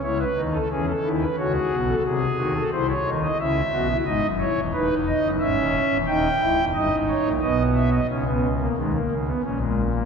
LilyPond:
<<
  \new Staff \with { instrumentName = "Pipe organ" } { \time 3/4 \key cis \minor \tempo 4 = 89 << { cis''16 b'8 a'16 gis'16 a'8 b'16 cis''16 gis'8 a'16 | gis'8 fis'16 a'16 bis'16 cis''8 dis''16 e''4 | dis''8 cis''8 b'8 dis''8 e''4 | g''4 dis''8 cis''8 dis''8 e''16 dis''16 |
r2. | } \\ { e'8 dis'8 cis'8 e'8 fis'4 | r4 e'8 dis'8 e'8 fis'16 e'16 | dis'8 e'8 dis'4 cis'4 | dis'8 e'8 dis'4 b4 |
cis'16 b8 ais16 gis16 ais8 b16 cis'16 gis8 ais16 | } >> }
  \new Staff \with { instrumentName = "Pipe organ" } { \clef bass \time 3/4 \key cis \minor <cis, cis>8 <dis, dis>8 <e, e>8 <dis, dis>8 <cis, cis>8 <b,, b,>8 | <bis,, bis,>8 <dis, dis>8 <bis,, bis,>8 <dis, dis>8 <cis, cis>8 <b,, b,>8 | <gis,, gis,>16 <fis,, fis,>8 <e,, e,>16 <dis,, dis,>16 <e,, e,>8 <fis,, fis,>16 <gis,, gis,>16 <dis,, dis,>8 <e,, e,>16 | <dis,, dis,>8 <cis,, cis,>16 <e,, e,>16 <g,, g,>16 <gis,, gis,>8 <ais,, ais,>16 <b,, b,>4 |
<cis, cis>4 <dis, dis>8 <cis, cis>8 <ais,, ais,>4 | }
>>